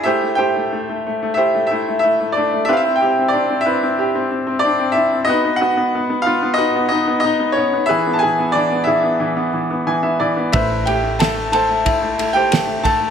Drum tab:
RD |--------|--------|--------|--------|
SD |--------|--------|--------|--------|
BD |--------|--------|--------|--------|

RD |xxxxxxxx|
SD |--o---o-|
BD |o---o--o|